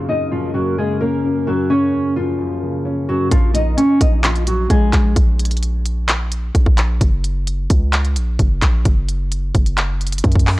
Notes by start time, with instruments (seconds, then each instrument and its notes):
Already playing: grand piano F#2 C#3, ambient pad C#3 A#3 C#4 A#4
0.08 grand piano F#2, nylon-string guitar D#4 D#5
0.32 grand piano F#2, nylon-string guitar F3 F4
0.54 grand piano F#2, nylon-string guitar F#3 F#4
0.77 grand piano C#3, nylon-string guitar G#3 G#4
1.01 nylon-string guitar A#3 A#4, grand piano C#4
1.24 grand piano F#2
1.47 grand piano F#2, nylon-string guitar F#3 F#4
1.70 grand piano C#3, nylon-string guitar C#4 C#5
1.93 grand piano F#2
2.16 grand piano F#2, nylon-string guitar F3 F4
2.38 grand piano F#2
2.63 grand piano C#3
2.85 grand piano C#4
3.09 grand piano F#2, nylon-string guitar F#3 F#4
3.31 808-style bass A#1, nylon-string guitar F3 F4, kick, closed hi-hat
3.54 nylon-string guitar D#4 D#5, closed hi-hat
3.77 nylon-string guitar C#4 C#5, closed hi-hat
4.01 808-style bass A#1, nylon-string guitar D#4 D#5, kick, closed hi-hat
4.24 nylon-string guitar F3 F4, clap, closed hi-hat
4.35 closed hi-hat
4.47 nylon-string guitar F#3 F#4, closed hi-hat
4.70 808-style bass A#1, nylon-string guitar G#3 G#4, kick, closed hi-hat
4.93 808-style bass A#1, kick, clap, closed hi-hat
5.16 808-style bass A#1, kick, closed hi-hat
5.39 closed hi-hat
5.45 closed hi-hat
5.51 closed hi-hat
5.57 closed hi-hat
5.63 closed hi-hat
5.85 closed hi-hat
6.08 clap, closed hi-hat
6.32 closed hi-hat
6.55 808-style bass A#1, kick, closed hi-hat
6.66 808-style bass A#1, kick
6.78 clap, closed hi-hat
7.01 808-style bass F#1, kick, closed hi-hat
7.24 closed hi-hat
7.47 closed hi-hat
7.70 808-style bass C#2, kick, closed hi-hat
7.93 clap, closed hi-hat
8.05 closed hi-hat
8.16 808-style bass A#1, closed hi-hat
8.39 808-style bass F#1, kick, closed hi-hat
8.62 808-style bass A#1, kick, clap, closed hi-hat
8.85 808-style bass F#1, kick, closed hi-hat
9.09 closed hi-hat
9.32 closed hi-hat
9.55 808-style bass F#1, kick, closed hi-hat, open hi-hat
9.66 closed hi-hat
9.78 clap, closed hi-hat
10.01 closed hi-hat
10.07 closed hi-hat
10.12 closed hi-hat
10.18 closed hi-hat
10.24 808-style bass F#2, kick, closed hi-hat
10.32 kick, closed hi-hat
10.39 closed hi-hat
10.47 clap, open hi-hat